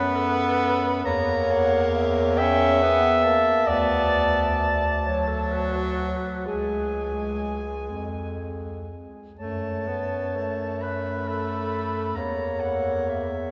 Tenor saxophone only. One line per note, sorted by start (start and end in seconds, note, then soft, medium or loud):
0.00 1.04 B3 loud
1.05 2.42 A#3 loud
2.40 2.84 C#4 loud
2.83 3.24 B3 loud
3.25 3.72 A#3 medium
3.70 4.78 B3 medium
5.06 6.48 F#3 medium
6.46 9.06 G#3 medium
9.39 9.89 A3 medium
9.88 10.37 B3 medium
10.35 12.19 A3 medium
12.17 13.51 A#3 medium